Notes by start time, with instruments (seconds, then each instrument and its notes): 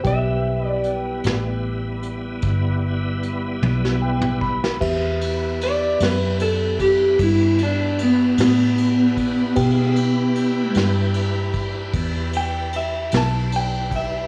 0.03 fingered electric bass B1, tonewheel organ G3 B3 E4, tine electric piano G4 B4 G5, electric slide guitar E5, kick, closed hi-hat
0.67 electric slide guitar D5
0.84 closed hi-hat
1.24 fingered electric bass A1, snare, closed hi-hat
2.03 closed hi-hat
2.42 fingered electric bass G1, kick, closed hi-hat
3.23 closed hi-hat
3.62 fingered electric bass B1, high tom
3.85 snare
4.02 tine electric piano G5
4.22 mid tom
4.42 tine electric piano B5, kick
4.64 snare
4.81 fingered electric bass E2, tonewheel organ G#3 C4 F4 B4, tine electric piano G4 B4 E5, kick, crash
5.21 tonewheel organ B3 E4 G4 B4, ride
5.61 electric slide guitar D5, ride
6.00 fingered electric bass F#2, electric slide guitar B4, snare, ride
6.40 electric slide guitar A4, ride
6.79 electric slide guitar G4, kick, ride
7.19 fingered electric bass G2, electric slide guitar E4, kick, ride
7.58 ride
7.63 electric slide guitar D4
7.98 ride
8.03 electric slide guitar B3
8.38 fingered electric bass A2, snare, ride
8.42 electric slide guitar B3
8.78 ride
9.17 kick, ride
9.56 fingered electric bass B2, tonewheel organ G#3 F4 B4 E5, tine electric piano G4 B4 G5, kick, ride
9.96 tonewheel organ E4 G4 B4, ride
10.36 ride
10.75 fingered electric bass G2, snare, ride
11.14 ride
11.53 kick, ride
11.93 fingered electric bass E2, kick, ride
12.33 electric slide guitar G5, ride
12.73 electric slide guitar E5, ride
13.12 fingered electric bass B1, snare, ride
13.17 electric slide guitar A5
13.52 ride
13.56 electric slide guitar G5
13.91 kick, ride
13.96 electric slide guitar E5